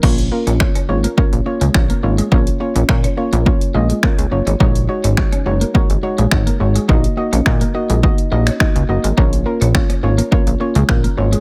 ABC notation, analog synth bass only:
X:1
M:4/4
L:1/16
Q:1/4=105
K:Bbm
V:1 name="Analog synth bass" clef=bass
B,,,3 B,,,2 z A,,,2 z B,,, z D,, B,,,2 A,,,2 | B,,,2 z B,,, B,,2 z B,,,2 z B,,,2 z D,, G,,, A,,, | B,,,3 A,,,2 z G,,,2 z A,,, z B,,, A,,,2 A,,,2 | B,,,2 z B,,, B,,2 z B,,,2 z B,,,2 z D,, G,,, A,,, |
B,,,3 B,,,2 z A,,,2 z B,,, z D,, B,,,2 A,,,2 |]